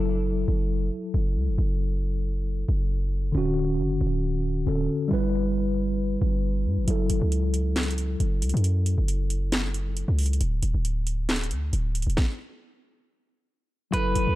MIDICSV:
0, 0, Header, 1, 5, 480
1, 0, Start_track
1, 0, Tempo, 441176
1, 1721, Time_signature, 4, 2, 24, 8
1, 15616, End_track
2, 0, Start_track
2, 0, Title_t, "Clean electric guitar"
2, 0, Program_c, 0, 27
2, 15162, Note_on_c, 0, 71, 113
2, 15616, Note_off_c, 0, 71, 0
2, 15616, End_track
3, 0, Start_track
3, 0, Title_t, "Tine electric piano"
3, 0, Program_c, 1, 4
3, 0, Note_on_c, 1, 54, 64
3, 0, Note_on_c, 1, 64, 65
3, 0, Note_on_c, 1, 69, 72
3, 23, Control_c, 1, 64, 127
3, 3584, Note_off_c, 1, 54, 0
3, 3598, Note_off_c, 1, 64, 0
3, 3612, Note_off_c, 1, 69, 0
3, 3615, Note_on_c, 1, 50, 81
3, 3643, Note_on_c, 1, 61, 66
3, 3653, Control_c, 1, 64, 0
3, 3672, Note_on_c, 1, 66, 93
3, 3863, Control_c, 1, 64, 127
3, 5039, Note_off_c, 1, 50, 0
3, 5054, Note_off_c, 1, 61, 0
3, 5065, Note_on_c, 1, 50, 58
3, 5068, Note_off_c, 1, 66, 0
3, 5079, Note_on_c, 1, 61, 55
3, 5093, Note_on_c, 1, 69, 71
3, 5528, Note_on_c, 1, 55, 81
3, 5553, Note_off_c, 1, 50, 0
3, 5557, Note_on_c, 1, 64, 71
3, 5560, Note_off_c, 1, 61, 0
3, 5568, Note_off_c, 1, 69, 0
3, 5577, Control_c, 1, 64, 0
3, 5586, Note_on_c, 1, 71, 90
3, 5765, Control_c, 1, 64, 127
3, 7426, Note_off_c, 1, 55, 0
3, 7441, Note_off_c, 1, 64, 0
3, 7453, Note_on_c, 1, 54, 62
3, 7456, Note_off_c, 1, 71, 0
3, 7482, Note_on_c, 1, 64, 65
3, 7497, Control_c, 1, 64, 0
3, 7510, Note_on_c, 1, 69, 71
3, 7718, Control_c, 1, 64, 127
3, 11264, Note_off_c, 1, 54, 0
3, 11278, Note_off_c, 1, 64, 0
3, 11292, Note_off_c, 1, 69, 0
3, 11336, Control_c, 1, 64, 0
3, 15133, Note_on_c, 1, 54, 67
3, 15162, Note_on_c, 1, 64, 66
3, 15191, Note_on_c, 1, 69, 73
3, 15364, Control_c, 1, 64, 127
3, 15616, Note_off_c, 1, 54, 0
3, 15616, Note_off_c, 1, 64, 0
3, 15616, Note_off_c, 1, 69, 0
3, 15616, End_track
4, 0, Start_track
4, 0, Title_t, "808-style bass"
4, 0, Program_c, 2, 38
4, 0, Note_on_c, 2, 30, 111
4, 493, Note_off_c, 2, 30, 0
4, 522, Note_on_c, 2, 30, 106
4, 983, Note_off_c, 2, 30, 0
4, 1242, Note_on_c, 2, 30, 109
4, 1482, Note_on_c, 2, 37, 98
4, 1498, Note_off_c, 2, 30, 0
4, 1609, Note_on_c, 2, 30, 99
4, 1625, Note_off_c, 2, 37, 0
4, 1716, Note_off_c, 2, 30, 0
4, 1722, Note_on_c, 2, 30, 112
4, 2878, Note_off_c, 2, 30, 0
4, 2922, Note_on_c, 2, 30, 102
4, 3613, Note_off_c, 2, 30, 0
4, 3642, Note_on_c, 2, 26, 107
4, 4122, Note_on_c, 2, 30, 99
4, 4138, Note_off_c, 2, 26, 0
4, 4350, Note_off_c, 2, 30, 0
4, 4361, Note_on_c, 2, 26, 106
4, 5053, Note_off_c, 2, 26, 0
4, 5082, Note_on_c, 2, 26, 107
4, 5312, Note_off_c, 2, 26, 0
4, 5562, Note_on_c, 2, 31, 113
4, 6718, Note_off_c, 2, 31, 0
4, 6761, Note_on_c, 2, 31, 106
4, 7242, Note_on_c, 2, 43, 103
4, 7258, Note_off_c, 2, 31, 0
4, 7369, Note_on_c, 2, 31, 98
4, 7385, Note_off_c, 2, 43, 0
4, 7476, Note_off_c, 2, 31, 0
4, 7482, Note_on_c, 2, 30, 111
4, 7712, Note_off_c, 2, 30, 0
4, 7722, Note_on_c, 2, 30, 106
4, 7844, Note_off_c, 2, 30, 0
4, 7849, Note_on_c, 2, 37, 101
4, 8879, Note_off_c, 2, 37, 0
4, 8922, Note_on_c, 2, 30, 108
4, 9162, Note_on_c, 2, 37, 102
4, 9178, Note_off_c, 2, 30, 0
4, 9282, Note_off_c, 2, 37, 0
4, 9289, Note_on_c, 2, 42, 101
4, 9750, Note_off_c, 2, 42, 0
4, 9769, Note_on_c, 2, 30, 101
4, 10925, Note_off_c, 2, 30, 0
4, 10969, Note_on_c, 2, 37, 99
4, 11307, Note_off_c, 2, 37, 0
4, 11322, Note_on_c, 2, 26, 113
4, 11552, Note_off_c, 2, 26, 0
4, 11561, Note_on_c, 2, 26, 105
4, 11684, Note_off_c, 2, 26, 0
4, 11689, Note_on_c, 2, 26, 106
4, 12522, Note_on_c, 2, 38, 99
4, 12538, Note_off_c, 2, 26, 0
4, 12750, Note_off_c, 2, 38, 0
4, 12762, Note_on_c, 2, 26, 102
4, 13114, Note_off_c, 2, 26, 0
4, 13129, Note_on_c, 2, 26, 102
4, 13237, Note_off_c, 2, 26, 0
4, 15162, Note_on_c, 2, 30, 116
4, 15392, Note_off_c, 2, 30, 0
4, 15402, Note_on_c, 2, 30, 108
4, 15524, Note_off_c, 2, 30, 0
4, 15528, Note_on_c, 2, 37, 103
4, 15616, Note_off_c, 2, 37, 0
4, 15616, End_track
5, 0, Start_track
5, 0, Title_t, "Drums"
5, 7482, Note_on_c, 9, 42, 76
5, 7591, Note_off_c, 9, 42, 0
5, 7721, Note_on_c, 9, 42, 81
5, 7829, Note_off_c, 9, 42, 0
5, 7963, Note_on_c, 9, 42, 72
5, 8072, Note_off_c, 9, 42, 0
5, 8201, Note_on_c, 9, 42, 77
5, 8310, Note_off_c, 9, 42, 0
5, 8442, Note_on_c, 9, 38, 105
5, 8442, Note_on_c, 9, 42, 70
5, 8454, Note_on_c, 9, 39, 88
5, 8522, Note_off_c, 9, 42, 0
5, 8522, Note_on_c, 9, 42, 71
5, 8551, Note_off_c, 9, 38, 0
5, 8563, Note_off_c, 9, 39, 0
5, 8602, Note_off_c, 9, 42, 0
5, 8602, Note_on_c, 9, 42, 69
5, 8682, Note_off_c, 9, 42, 0
5, 8682, Note_on_c, 9, 42, 71
5, 8791, Note_off_c, 9, 42, 0
5, 8923, Note_on_c, 9, 42, 65
5, 9032, Note_off_c, 9, 42, 0
5, 9162, Note_on_c, 9, 42, 83
5, 9242, Note_off_c, 9, 42, 0
5, 9242, Note_on_c, 9, 42, 66
5, 9322, Note_off_c, 9, 42, 0
5, 9322, Note_on_c, 9, 42, 46
5, 9402, Note_off_c, 9, 42, 0
5, 9402, Note_on_c, 9, 42, 77
5, 9511, Note_off_c, 9, 42, 0
5, 9640, Note_on_c, 9, 42, 81
5, 9749, Note_off_c, 9, 42, 0
5, 9883, Note_on_c, 9, 42, 74
5, 9992, Note_off_c, 9, 42, 0
5, 10121, Note_on_c, 9, 42, 76
5, 10229, Note_off_c, 9, 42, 0
5, 10360, Note_on_c, 9, 42, 82
5, 10362, Note_on_c, 9, 38, 105
5, 10374, Note_on_c, 9, 39, 84
5, 10469, Note_off_c, 9, 42, 0
5, 10471, Note_off_c, 9, 38, 0
5, 10483, Note_off_c, 9, 39, 0
5, 10602, Note_on_c, 9, 42, 72
5, 10710, Note_off_c, 9, 42, 0
5, 10843, Note_on_c, 9, 42, 65
5, 10952, Note_off_c, 9, 42, 0
5, 11082, Note_on_c, 9, 42, 70
5, 11085, Note_on_c, 9, 46, 88
5, 11162, Note_off_c, 9, 42, 0
5, 11162, Note_on_c, 9, 42, 68
5, 11193, Note_off_c, 9, 46, 0
5, 11242, Note_off_c, 9, 42, 0
5, 11242, Note_on_c, 9, 42, 67
5, 11322, Note_off_c, 9, 42, 0
5, 11322, Note_on_c, 9, 42, 79
5, 11430, Note_off_c, 9, 42, 0
5, 11560, Note_on_c, 9, 42, 82
5, 11669, Note_off_c, 9, 42, 0
5, 11803, Note_on_c, 9, 42, 72
5, 11911, Note_off_c, 9, 42, 0
5, 12041, Note_on_c, 9, 42, 76
5, 12149, Note_off_c, 9, 42, 0
5, 12281, Note_on_c, 9, 42, 71
5, 12282, Note_on_c, 9, 38, 108
5, 12294, Note_on_c, 9, 39, 88
5, 12362, Note_off_c, 9, 42, 0
5, 12362, Note_on_c, 9, 42, 68
5, 12391, Note_off_c, 9, 38, 0
5, 12403, Note_off_c, 9, 39, 0
5, 12442, Note_off_c, 9, 42, 0
5, 12442, Note_on_c, 9, 42, 67
5, 12521, Note_off_c, 9, 42, 0
5, 12521, Note_on_c, 9, 42, 72
5, 12630, Note_off_c, 9, 42, 0
5, 12763, Note_on_c, 9, 42, 67
5, 12871, Note_off_c, 9, 42, 0
5, 13002, Note_on_c, 9, 42, 83
5, 13082, Note_off_c, 9, 42, 0
5, 13082, Note_on_c, 9, 42, 66
5, 13162, Note_off_c, 9, 42, 0
5, 13162, Note_on_c, 9, 42, 48
5, 13242, Note_on_c, 9, 36, 110
5, 13242, Note_on_c, 9, 38, 93
5, 13271, Note_off_c, 9, 42, 0
5, 13350, Note_off_c, 9, 36, 0
5, 13350, Note_off_c, 9, 38, 0
5, 15162, Note_on_c, 9, 42, 78
5, 15270, Note_off_c, 9, 42, 0
5, 15400, Note_on_c, 9, 42, 87
5, 15509, Note_off_c, 9, 42, 0
5, 15616, End_track
0, 0, End_of_file